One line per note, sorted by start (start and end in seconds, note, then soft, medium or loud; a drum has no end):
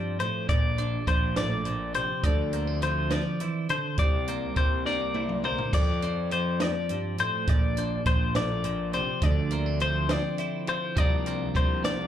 0.00 0.20 G2 medium
0.00 1.07 F3 medium
0.00 0.49 C4 soft
0.00 0.20 D5 medium
0.20 0.48 A2 medium
0.20 0.49 C5 medium
0.20 closed hi-hat medium
0.49 0.96 A#1 loud
0.49 1.36 A#2 medium
0.49 1.08 D5 medium
0.49 kick loud
0.49 closed hi-hat loud
0.78 2.21 D4 medium
0.78 closed hi-hat medium
1.07 2.00 A#1 medium
1.07 2.81 F3 medium
1.07 1.37 C5 medium
1.07 kick medium
1.07 closed hi-hat medium
1.36 1.65 A2 medium
1.36 1.95 D5 medium
1.36 snare loud
1.36 closed hi-hat loud
1.65 1.95 A#2 medium
1.65 closed hi-hat medium
1.94 2.24 C3 medium
1.94 2.24 C5 medium
1.94 closed hi-hat medium
2.23 3.17 D2 medium
2.23 3.40 D3 medium
2.23 2.82 D5 medium
2.23 kick loud
2.23 closed hi-hat medium
2.53 2.67 A#3 medium
2.53 closed hi-hat medium
2.67 3.98 C4 medium
2.82 3.10 F3 medium
2.82 3.11 C5 medium
2.82 closed hi-hat medium
3.11 3.40 F3 medium
3.11 3.70 D5 medium
3.11 snare loud
3.11 closed hi-hat medium
3.40 3.69 E3 medium
3.40 closed hi-hat medium
3.69 3.99 D3 medium
3.69 3.99 C5 medium
3.69 closed hi-hat medium
3.98 4.45 C2 medium
3.98 5.73 C3 medium
3.98 4.57 D5 medium
3.98 kick loud
3.98 closed hi-hat medium
4.28 4.85 A#3 medium
4.28 closed hi-hat medium
4.56 5.49 C2 loud
4.56 5.69 G3 medium
4.56 4.86 C5 medium
4.56 kick medium
4.56 closed hi-hat medium
4.86 5.73 A#3 medium
4.86 5.44 D5 medium
4.86 snare medium
5.14 5.70 E4 medium
5.14 high tom medium
5.29 mid tom medium
5.44 5.70 A#4 medium
5.44 5.74 C5 medium
5.44 mid tom medium
5.58 floor tom medium
5.73 6.66 F2 medium
5.73 6.59 F2 medium
5.73 6.32 D5 medium
5.73 kick loud
5.73 closed hi-hat medium
5.73 splash medium
6.02 7.44 C4 medium
6.02 closed hi-hat medium
6.31 8.06 F3 medium
6.31 6.62 C5 medium
6.31 closed hi-hat medium
6.60 6.89 F2 medium
6.60 7.19 D5 medium
6.60 snare loud
6.60 closed hi-hat loud
6.89 7.18 G2 medium
6.89 closed hi-hat medium
7.18 7.47 A2 medium
7.18 7.49 C5 medium
7.18 closed hi-hat medium
7.47 7.94 A#1 loud
7.47 8.35 A#2 medium
7.47 8.06 D5 medium
7.47 kick loud
7.47 closed hi-hat medium
7.77 9.51 D4 medium
7.77 closed hi-hat medium
8.06 8.99 A#1 loud
8.06 9.81 F3 medium
8.06 8.35 C5 medium
8.06 kick medium
8.06 closed hi-hat medium
8.35 8.63 A2 medium
8.35 8.94 D5 medium
8.35 snare loud
8.35 closed hi-hat medium
8.64 8.93 A#2 medium
8.64 closed hi-hat medium
8.93 9.22 C3 medium
8.93 9.23 C5 medium
8.93 closed hi-hat medium
9.22 10.15 D2 medium
9.22 10.93 D3 medium
9.22 9.81 D5 medium
9.22 kick loud
9.22 closed hi-hat medium
9.51 9.66 A#3 medium
9.51 closed hi-hat medium
9.66 10.09 C4 medium
9.80 10.96 F3 medium
9.80 10.11 C5 medium
9.80 closed hi-hat medium
10.09 10.97 C4 medium
10.09 10.69 D5 medium
10.09 snare loud
10.09 closed hi-hat loud
10.38 10.94 E4 medium
10.38 closed hi-hat medium
10.67 10.98 F4 medium
10.67 10.98 C5 medium
10.67 closed hi-hat medium
10.96 11.43 C2 loud
10.96 11.55 C3 medium
10.96 11.53 F3 medium
10.96 11.26 A#3 medium
10.96 12.07 D4 medium
10.96 12.07 F4 medium
10.96 11.56 D5 medium
10.96 kick loud
10.96 closed hi-hat loud
11.26 12.07 A#3 medium
11.26 closed hi-hat medium
11.54 12.07 C2 loud
11.54 12.07 F3 medium
11.54 11.84 C5 medium
11.54 kick medium
11.54 closed hi-hat medium
11.84 12.07 C3 medium
11.84 12.07 D5 medium
11.84 snare loud
11.84 closed hi-hat loud